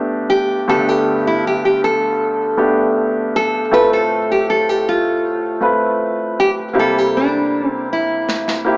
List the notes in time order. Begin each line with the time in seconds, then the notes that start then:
Already playing: G2 D3 A3 B3 D4 G4
0.30 G4
0.68 G2 D3 A3 B3 D4 G4 A4
0.89 G4
1.27 E4
1.47 G4
1.65 G4
1.84 A4
2.57 A3 B3 D4 G4
3.36 A4
3.71 A2 A3 C4 F4 A4 B4
3.93 A4
4.31 G4
4.50 A4
4.69 G4
4.89 F4
5.61 A3 C4 F4 B4
6.40 G4
6.73 C3 G3 A#3 C4 E4 G4
6.79 A4
6.98 G4
7.17 D4
7.69 C4
7.93 E4
8.29 snare
8.48 snare
8.65 A#3 C4 E4 G4